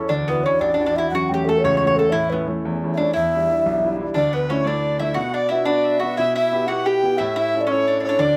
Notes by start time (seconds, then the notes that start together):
Already playing: C#4
0.08 D2 E2 D4 D5
0.28 B3 D4 E4 F#4 B4
0.44 C#4 D4 E4 F#4 C#5
0.60 A1 D4 D5
0.74 D4
0.80 D4 E4 F#4
0.86 D4
0.96 D4 E4 F#4 E5
1.10 F#2 F#5
1.15 F#4
1.29 A3 C#4 F#4 G5
1.34 G4
1.45 A3 C#4 F#4 A4
1.60 C#2 C#5
1.65 C#5
1.77 C#5
1.83 A3 C#4 F#4 C#5
1.96 A3 C#4 F#4 A4
2.10 E4 E5
2.14 A2
2.30 A3 B3 C#4 E4 B4
2.47 A3 C#4 E4
2.65 E2
2.83 A3 C#4 E4
2.94 D4 D5 E5
2.99 A3 C#4 E4
3.13 E2 E4 E5
3.34 G3 D4 E4
3.50 G3 D4 E4
3.66 B1
3.84 G3 D4 E4
4.00 G3 D4 E4
4.14 D2 D4 D5
4.33 B3 B4
4.47 A3 C#4 D4 E4 B4 C#5
4.51 C#5
4.64 A3 D4 E4 D5
4.99 A3 D4 E4 E5
5.14 B2 F#4 F#5
5.34 D4 D5
5.49 B3 D4 E4 F#4 E5
5.65 B3 D4 F#4 D5
5.84 E5
6.00 B3 F#4 F#5
6.04 D4 F#4
6.17 B2 E4 E5
6.35 E4 E5
6.52 B3 E4 G4
6.67 B3 E4 F#4 G4 F#5
6.86 G4 G5
7.03 B3 E4 G4
7.17 A2 E4 E5
7.36 E4 E5
7.54 C#4 E4 A4
7.61 D5
7.67 C#4 C#5
7.71 E4 A4
7.88 D4
8.00 C#4 D4 C#5
8.04 E4 A4 C#5
8.09 D4
8.19 D2 D4 D5